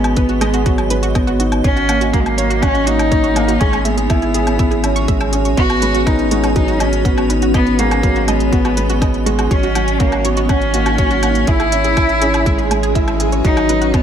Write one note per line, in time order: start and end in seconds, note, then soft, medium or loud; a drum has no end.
0.00 1.62 G#1 medium
0.00 0.66 F#3 medium
0.00 0.41 G#3 medium
0.00 0.16 B3 loud
0.00 1.40 B3 medium
0.00 1.40 D#4 medium
0.00 2.43 D#5 medium
0.04 closed hi-hat soft
0.04 low woodblock medium
0.16 0.40 B3 medium
0.16 0.28 B4 loud
0.16 kick loud
0.16 closed hi-hat soft
0.29 0.34 F#4 loud
0.29 closed hi-hat soft
0.41 0.55 G#3 loud
0.41 0.46 D#5 loud
0.41 closed hi-hat medium
0.41 low woodblock medium
0.54 0.58 F#4 loud
0.54 closed hi-hat soft
0.66 0.80 F#3 loud
0.66 0.73 F#4 loud
0.66 kick loud
0.66 closed hi-hat soft
0.78 closed hi-hat soft
0.78 low woodblock medium
0.90 1.05 F#3 medium
0.90 1.01 B4 loud
0.90 closed hi-hat medium
1.03 1.07 F#4 loud
1.03 closed hi-hat soft
1.15 1.38 B3 medium
1.15 1.20 D#5 loud
1.15 kick loud
1.15 closed hi-hat soft
1.15 low woodblock medium
1.27 1.32 F#4 loud
1.27 closed hi-hat soft
1.40 1.63 D#4 medium
1.40 1.47 F#4 medium
1.40 closed hi-hat medium
1.52 closed hi-hat soft
1.52 low woodblock medium
1.64 3.58 G#1 medium
1.64 3.61 A#3 medium
1.64 2.10 C#4 loud
1.64 1.88 C#4 medium
1.64 1.75 C#5 loud
1.64 kick loud
1.64 closed hi-hat soft
1.76 1.81 F#4 loud
1.76 closed hi-hat soft
1.89 2.03 A#3 medium
1.89 1.93 F#5 loud
1.89 closed hi-hat medium
1.89 low woodblock medium
2.01 2.06 F#4 loud
2.01 closed hi-hat soft
2.13 2.28 F#3 medium
2.13 2.22 A#3 medium
2.13 2.21 F#4 medium
2.13 kick loud
2.13 closed hi-hat soft
2.20 2.28 G#3 medium
2.26 2.63 A#3 loud
2.26 closed hi-hat soft
2.26 low woodblock medium
2.38 2.52 A#3 medium
2.38 2.49 C#5 loud
2.38 closed hi-hat medium
2.50 2.55 F#4 loud
2.50 4.40 G#4 medium
2.50 4.40 C#5 medium
2.50 closed hi-hat soft
2.62 2.87 C#4 loud
2.62 2.86 C#4 loud
2.62 2.67 F#5 loud
2.62 kick loud
2.62 closed hi-hat soft
2.62 low woodblock medium
2.75 2.79 F#4 loud
2.75 closed hi-hat soft
2.86 3.11 A#3 medium
2.86 3.61 D#4 loud
2.86 2.94 F#4 loud
2.86 closed hi-hat medium
2.99 closed hi-hat soft
2.99 low woodblock medium
3.11 3.35 C#4 loud
3.11 3.23 C#5 loud
3.11 kick loud
3.11 closed hi-hat soft
3.24 3.28 F#4 loud
3.24 closed hi-hat soft
3.36 3.50 A#3 loud
3.36 3.41 F#5 loud
3.36 closed hi-hat medium
3.36 low woodblock medium
3.48 3.53 F#4 loud
3.48 closed hi-hat soft
3.60 5.55 G#1 medium
3.60 3.75 G#3 loud
3.60 3.86 C#4 loud
3.60 10.30 C#4 medium
3.60 3.68 G#4 loud
3.60 kick loud
3.60 closed hi-hat soft
3.71 10.16 F#4 medium
3.71 closed hi-hat soft
3.71 low woodblock medium
3.84 4.00 G#3 medium
3.84 5.32 B3 loud
3.84 3.96 E5 loud
3.84 closed hi-hat medium
3.98 4.02 G#4 loud
3.98 closed hi-hat soft
4.10 4.33 E4 loud
4.10 4.14 G#5 medium
4.10 kick loud
4.10 closed hi-hat soft
4.10 low woodblock medium
4.22 4.27 G#4 loud
4.22 closed hi-hat soft
4.34 4.42 G#4 loud
4.34 4.58 G#4 medium
4.34 closed hi-hat medium
4.47 9.51 C#5 medium
4.47 closed hi-hat soft
4.47 low woodblock medium
4.59 4.83 E4 medium
4.59 4.70 E5 loud
4.59 kick loud
4.59 closed hi-hat soft
4.71 4.76 G#4 medium
4.71 closed hi-hat soft
4.83 4.98 C#4 medium
4.83 4.88 E5 medium
4.83 closed hi-hat medium
4.83 low woodblock medium
4.96 5.03 C#6 loud
4.96 closed hi-hat soft
5.08 5.22 G#3 medium
5.08 5.16 E5 loud
5.08 kick loud
5.08 closed hi-hat soft
5.20 5.28 E6 loud
5.20 closed hi-hat soft
5.20 low woodblock medium
5.33 5.47 C#4 medium
5.33 5.44 G#4 medium
5.33 closed hi-hat medium
5.45 5.56 C#6 medium
5.45 closed hi-hat soft
5.57 9.49 G#1 medium
5.57 5.81 B3 loud
5.57 5.65 F#4 loud
5.57 6.08 F#4 loud
5.57 kick loud
5.57 closed hi-hat soft
5.70 5.74 F#4 loud
5.70 closed hi-hat soft
5.70 low woodblock medium
5.82 6.05 G#3 medium
5.82 5.93 B4 loud
5.82 closed hi-hat medium
5.94 5.99 F#4 loud
5.94 closed hi-hat soft
6.07 6.30 B3 medium
6.07 6.55 D#4 loud
6.07 6.11 D#5 medium
6.07 kick loud
6.07 closed hi-hat soft
6.07 low woodblock medium
6.19 closed hi-hat soft
6.31 6.45 G#3 loud
6.31 6.39 F#4 loud
6.31 closed hi-hat medium
6.44 6.48 F#4 loud
6.44 closed hi-hat soft
6.44 low woodblock medium
6.56 6.70 F#3 loud
6.56 6.82 D#4 loud
6.56 6.67 B4 loud
6.56 kick loud
6.56 closed hi-hat soft
6.68 6.73 F#4 loud
6.68 closed hi-hat soft
6.80 6.95 F#3 medium
6.80 7.30 C#4 medium
6.80 6.85 D#5 loud
6.80 10.30 D#5 medium
6.80 closed hi-hat medium
6.80 low woodblock medium
6.93 closed hi-hat soft
7.05 7.29 B3 medium
7.05 7.13 F#4 loud
7.05 kick loud
7.05 closed hi-hat soft
7.17 7.22 F#4 loud
7.17 closed hi-hat soft
7.17 low woodblock medium
7.30 7.53 D#4 medium
7.30 7.41 B4 loud
7.30 closed hi-hat medium
7.42 7.47 F#4 loud
7.42 closed hi-hat soft
7.54 7.81 B3 loud
7.54 7.78 B3 medium
7.54 7.59 D#5 loud
7.54 kick loud
7.54 closed hi-hat soft
7.54 low woodblock medium
7.67 closed hi-hat soft
7.79 7.93 G#3 medium
7.79 8.30 A#3 loud
7.79 7.86 F#4 loud
7.79 closed hi-hat medium
7.91 7.96 F#4 loud
7.91 closed hi-hat soft
7.91 low woodblock medium
8.03 8.18 F#3 medium
8.03 8.15 B4 medium
8.03 kick loud
8.03 closed hi-hat soft
8.16 8.20 F#4 loud
8.16 closed hi-hat soft
8.28 8.42 G#3 medium
8.28 9.27 B3 loud
8.28 8.33 D#5 loud
8.28 closed hi-hat medium
8.28 low woodblock medium
8.40 closed hi-hat soft
8.52 8.76 B3 loud
8.52 8.60 F#4 loud
8.52 kick medium
8.52 closed hi-hat soft
8.65 8.70 F#4 loud
8.65 closed hi-hat soft
8.65 low woodblock medium
8.77 9.00 G#3 medium
8.77 8.88 B4 loud
8.77 closed hi-hat medium
8.90 8.94 F#4 loud
8.90 closed hi-hat soft
9.01 9.25 B3 loud
9.01 9.06 D#5 loud
9.01 kick loud
9.01 closed hi-hat soft
9.01 low woodblock medium
9.14 closed hi-hat soft
9.26 9.40 G#3 loud
9.26 9.34 F#4 loud
9.26 closed hi-hat medium
9.39 9.43 F#4 loud
9.39 closed hi-hat soft
9.39 low woodblock medium
9.50 11.45 G#1 medium
9.50 9.65 F#3 loud
9.50 11.47 A#3 medium
9.50 10.02 C#4 loud
9.50 9.62 C#5 loud
9.50 kick loud
9.50 closed hi-hat soft
9.63 9.68 F#4 loud
9.63 closed hi-hat soft
9.73 9.90 F#3 medium
9.73 11.48 D#4 medium
9.73 9.80 F#5 loud
9.73 closed hi-hat medium
9.73 low woodblock medium
9.83 12.27 C#5 medium
9.88 closed hi-hat soft
10.00 10.27 A#3 medium
10.00 10.24 C#4 loud
10.00 10.08 F#4 loud
10.00 kick loud
10.00 closed hi-hat soft
10.12 10.17 F#4 loud
10.12 closed hi-hat soft
10.12 low woodblock medium
10.25 10.51 B3 medium
10.25 10.48 F#4 medium
10.25 10.36 C#5 loud
10.25 closed hi-hat medium
10.37 10.42 F#4 loud
10.37 12.26 G#4 medium
10.37 closed hi-hat soft
10.49 10.73 C#4 medium
10.49 11.50 C#4 loud
10.49 10.54 F#5 loud
10.49 kick medium
10.49 closed hi-hat soft
10.49 low woodblock medium
10.62 closed hi-hat soft
10.74 10.88 A#3 medium
10.74 10.81 F#4 loud
10.74 closed hi-hat medium
10.86 10.91 F#4 loud
10.86 closed hi-hat soft
10.86 low woodblock medium
10.98 11.13 F#3 medium
10.98 11.10 C#5 loud
10.98 kick loud
10.98 closed hi-hat soft
11.11 11.15 F#4 loud
11.11 closed hi-hat soft
11.23 11.37 A#3 medium
11.23 11.28 F#5 medium
11.23 closed hi-hat medium
11.23 low woodblock medium
11.35 closed hi-hat soft
11.47 13.42 G#1 medium
11.47 14.03 C#4 medium
11.47 11.71 E4 loud
11.47 12.96 E4 loud
11.47 11.55 G#4 loud
11.47 kick loud
11.47 closed hi-hat soft
11.60 11.64 G#4 loud
11.60 closed hi-hat soft
11.60 low woodblock medium
11.72 11.96 C#4 medium
11.72 11.83 E5 medium
11.72 closed hi-hat medium
11.78 13.44 E5 medium
11.84 14.03 F#4 loud
11.84 11.89 G#4 loud
11.84 closed hi-hat soft
11.97 12.20 E4 loud
11.97 12.02 G#5 loud
11.97 kick loud
11.97 closed hi-hat soft
11.97 low woodblock medium
12.09 closed hi-hat soft
12.21 12.36 C#4 loud
12.21 12.29 G#4 loud
12.21 closed hi-hat medium
12.34 12.38 G#4 loud
12.34 14.03 B4 medium
12.34 closed hi-hat soft
12.34 low woodblock medium
12.46 12.60 G#3 loud
12.46 12.57 E5 loud
12.46 kick loud
12.46 closed hi-hat soft
12.46 swell medium
12.58 12.63 G#4 loud
12.58 closed hi-hat soft
12.71 12.85 G#3 medium
12.71 12.78 G#5 medium
12.71 closed hi-hat medium
12.71 low woodblock medium
12.83 12.90 G#4 loud
12.83 closed hi-hat soft
12.95 13.19 E4 medium
12.95 13.00 E6 loud
12.95 kick medium
12.95 closed hi-hat soft
13.08 13.19 E5 medium
13.08 closed hi-hat soft
13.08 low woodblock medium
13.20 13.24 G#4 medium
13.20 13.43 G#4 medium
13.20 closed hi-hat medium
13.32 13.40 C#5 medium
13.32 closed hi-hat soft
13.44 14.03 G#1 medium
13.44 13.59 F#3 loud
13.44 13.96 D#4 loud
13.44 13.52 F#4 loud
13.44 kick loud
13.44 closed hi-hat soft
13.57 13.61 F#4 loud
13.57 closed hi-hat soft
13.57 low woodblock medium
13.69 13.83 F#3 medium
13.69 13.80 B4 medium
13.69 closed hi-hat medium
13.82 13.86 F#4 loud
13.82 closed hi-hat soft
13.94 14.03 B3 loud
13.94 13.98 D#5 medium
13.94 kick loud
13.94 closed hi-hat soft
13.94 low woodblock medium